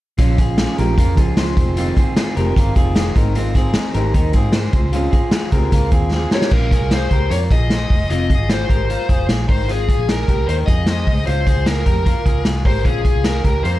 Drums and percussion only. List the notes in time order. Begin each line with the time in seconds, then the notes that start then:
0.19 kick, closed hi-hat
0.38 kick, closed hi-hat
0.58 snare, closed hi-hat
0.78 closed hi-hat
0.98 kick, closed hi-hat
1.17 kick, closed hi-hat
1.37 snare, closed hi-hat
1.57 kick, closed hi-hat
1.77 closed hi-hat
1.97 kick, closed hi-hat
2.16 snare, closed hi-hat
2.37 closed hi-hat
2.56 kick, closed hi-hat
2.76 kick, closed hi-hat
2.96 snare, closed hi-hat
3.16 kick, closed hi-hat
3.35 closed hi-hat
3.55 kick, closed hi-hat
3.74 snare, closed hi-hat
3.94 closed hi-hat
4.14 kick, closed hi-hat
4.33 kick, closed hi-hat
4.53 snare, closed hi-hat
4.73 kick, closed hi-hat
4.93 closed hi-hat
5.13 kick, closed hi-hat
5.31 snare, closed hi-hat
5.52 kick, closed hi-hat
5.72 kick, closed hi-hat
5.92 kick, closed hi-hat
6.11 snare
6.31 snare
6.42 snare
6.51 kick, crash
6.71 kick, closed hi-hat
6.91 snare, closed hi-hat
7.11 kick, closed hi-hat
7.31 closed hi-hat
7.51 kick, closed hi-hat
7.70 snare, closed hi-hat
7.90 kick, open hi-hat
8.10 closed hi-hat
8.30 kick, closed hi-hat
8.49 snare, closed hi-hat
8.70 kick, closed hi-hat
8.90 closed hi-hat
9.09 kick, closed hi-hat
9.29 snare, closed hi-hat
9.49 kick, open hi-hat
9.69 closed hi-hat
9.89 kick, closed hi-hat
10.09 snare, closed hi-hat
10.28 kick, closed hi-hat
10.49 closed hi-hat
10.68 kick, closed hi-hat
10.86 snare, closed hi-hat
11.07 kick, open hi-hat
11.27 closed hi-hat
11.47 kick, closed hi-hat
11.66 snare, closed hi-hat
11.86 kick, closed hi-hat
12.06 kick, closed hi-hat
12.26 kick, closed hi-hat
12.45 snare, closed hi-hat
12.65 kick, open hi-hat
12.85 kick, closed hi-hat
13.05 kick, closed hi-hat
13.24 snare, closed hi-hat
13.44 kick, closed hi-hat
13.65 closed hi-hat